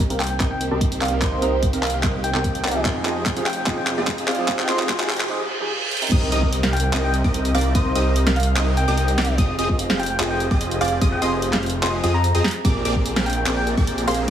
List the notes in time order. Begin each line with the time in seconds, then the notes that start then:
Already playing: D#3 A#3 C4 G4, riser
0.09 C2 C3 C4 D#4 G4 A#4 F5, closed hi-hat
0.20 G5, clap, closed hi-hat
0.24 closed hi-hat
0.27 G5, closed hi-hat
0.40 C2 C3 C4 D#4 G4 A#4 D#5, kick, clap, closed hi-hat
0.51 G5
0.61 closed hi-hat
0.71 C2 C3 C4 D#4 G4 A#4 D#5
0.81 kick, closed hi-hat
0.92 closed hi-hat
1.01 C2 C4 D#4 G4 A#4 D5 F5, clap, closed hi-hat
1.05 closed hi-hat
1.08 C3 C4, closed hi-hat
1.13 D#4 A#4
1.22 C2 C4 D#4 G4 A#4 C5 D#5, kick, clap, closed hi-hat
1.41 C2 C3 C4 D#4 G4 A#4 D#5, closed hi-hat
1.63 kick, closed hi-hat
1.72 C2 C3 C4 D#4 G4 A#4 F5, closed hi-hat
1.83 F5, clap, closed hi-hat
1.87 closed hi-hat
1.90 closed hi-hat
1.94 F5
2.03 C2 C3 C4 D#4 G4 A#4 D#5, kick, clap, closed hi-hat
2.24 G5, closed hi-hat
2.34 C2 C3 C4 D#4 G4 A#4 D#5, clap
2.44 kick, closed hi-hat
2.55 closed hi-hat
2.64 C2 C4 D#4 G4 A#4 D5, clap, closed hi-hat
2.68 closed hi-hat
2.71 F3 D#4, closed hi-hat
2.76 G4 G#4
2.85 F1 F3 G#3 C4 D#4 F4 G4 G#4 D#5, kick, clap, closed hi-hat
3.05 F1 F3 C4 D#4 F4 G4 G#4 D#5, clap, closed hi-hat
3.26 kick, clap, closed hi-hat
3.36 F1 F3 C4 D#4 F4 G4 G#4 F5, closed hi-hat
3.46 G5, clap, closed hi-hat
3.50 closed hi-hat
3.53 closed hi-hat
3.57 G5
3.66 F1 F3 C4 D#4 F4 G4 G#4 D#5, kick, clap, closed hi-hat
3.78 G5
3.87 clap, closed hi-hat
3.97 F1 F3 C4 D#4 F4 G4 G#4 D#5
4.07 kick, clap, closed hi-hat
4.18 closed hi-hat
4.28 F1 C4 F4 G4 G#4 D5 F5, clap, closed hi-hat
4.31 closed hi-hat
4.35 F3 D#4, closed hi-hat
4.39 G4 G#4
4.48 F1 C4 F4 G4 G#4 D#5, kick, clap, closed hi-hat
4.59 G5, clap
4.68 F1 F3 C4 D#4 F4 G4 G#4 D#5 C6, clap, closed hi-hat
4.79 clap
4.89 kick, clap, closed hi-hat
4.99 F1 F3 C4 D#4 F4 G4 G#4 F5, clap, closed hi-hat
5.10 clap, closed hi-hat
5.13 closed hi-hat
5.16 clap, closed hi-hat
5.29 F3 D#4 G4 G#4, reverse cymbal
5.60 F3 D#4 G4 G#4
5.91 closed hi-hat
5.97 closed hi-hat
6.01 C3 C4 D#4 A#4, closed hi-hat
6.07 closed hi-hat
6.12 C2 C4 D#4 G4 A#4 D#5 D#6, kick, closed hi-hat, crash, impact
6.32 C2 C4 D#4 G4 A#4 D#5 D#6, closed hi-hat
6.43 kick
6.53 closed hi-hat
6.63 C2 C4 D#4 G4 A#4 F5 F6, snare, closed hi-hat
6.73 G5, closed hi-hat
6.77 closed hi-hat
6.80 G5, closed hi-hat
6.93 C2 C4 D#4 G4 A#4 D#5 D#6, clap, closed hi-hat
7.04 G5
7.14 closed hi-hat
7.24 C2 C4 D#4 G4 A#4 D#5 D#6, kick
7.34 closed hi-hat
7.45 closed hi-hat
7.54 C2 C4 D#4 G4 A#4 D5 F5 D6, closed hi-hat
7.58 closed hi-hat
7.61 closed hi-hat
7.75 C2 C4 D#4 G4 A#4 C5 D#5 D#6, kick, closed hi-hat
7.95 C2 C4 D#4 G4 A#4 D#5 D#6, closed hi-hat
8.16 closed hi-hat
8.27 C2 C4 D#4 G4 A#4 F5 F6, snare, closed hi-hat
8.36 F5, closed hi-hat
8.40 closed hi-hat
8.43 closed hi-hat
8.47 F5
8.57 C2 C4 D#4 G4 A#4 D#5 D#6, clap, closed hi-hat
8.77 G5, closed hi-hat
8.88 C2 C4 D#4 G4 A#4 D#5 D#6
8.97 closed hi-hat
9.08 closed hi-hat
9.18 C2 C4 D#4 G4 A#4 D5 D6, snare, closed hi-hat
9.21 closed hi-hat
9.25 closed hi-hat
9.38 F1 C4 F4 G4 G#4 D#5 D#6, kick, closed hi-hat
9.59 F1 C4 F4 G4 G#4 D#5 D#6, closed hi-hat
9.69 kick
9.79 closed hi-hat
9.90 F1 C4 F4 G4 G#4 F5 F6, snare, closed hi-hat
9.99 G5, closed hi-hat
10.03 closed hi-hat
10.06 G5, closed hi-hat
10.20 F1 C4 F4 G4 G#4 D#5 D#6, clap, closed hi-hat
10.30 G5
10.40 closed hi-hat
10.51 F1 C4 F4 G4 G#4 D#5 D#6, kick
10.61 closed hi-hat
10.71 closed hi-hat
10.81 F1 C4 F4 G4 G#4 D5 F5 D6, closed hi-hat
10.85 closed hi-hat
10.88 closed hi-hat
11.01 F1 C4 F4 G4 G#4 D#5 D#6, kick, closed hi-hat
11.12 G5
11.22 F1 C4 F4 G4 G#4 D#5 C6 D#6, closed hi-hat
11.42 closed hi-hat
11.53 F1 C4 F4 G4 G#4 F5 F6, clap, snare, closed hi-hat
11.63 closed hi-hat
11.66 closed hi-hat
11.70 closed hi-hat
11.83 F1 C4 F4 G4 G#4 D#5 C6 D#6, clap, closed hi-hat
12.04 F2 C4 F4 G4 G#4 D#5 D#6, closed hi-hat
12.14 A#5
12.24 closed hi-hat
12.35 F2 C4 F4 G4 G#4 D#5 D#6, closed hi-hat
12.44 snare, closed hi-hat
12.48 closed hi-hat
12.51 closed hi-hat
12.65 A#1 C4 G4 G#4 A#4 D5 D6, kick, closed hi-hat
12.85 A#1 C4 G4 G#4 A#4 D5 D6, closed hi-hat
12.96 kick
13.06 closed hi-hat
13.16 A#1 C4 G4 G#4 A#4 F5 F6, snare, closed hi-hat
13.26 G5, closed hi-hat
13.30 closed hi-hat
13.33 G5, closed hi-hat
13.46 A#1 C4 G4 G#4 A#4 D5 D6, clap, closed hi-hat
13.57 G5
13.67 closed hi-hat
13.77 A#1 C4 G4 G#4 A#4 D5 D6, kick
13.87 closed hi-hat
13.98 closed hi-hat
14.07 A#1 C4 G4 G#4 A#4 C5 F5 C6, closed hi-hat
14.11 closed hi-hat
14.14 closed hi-hat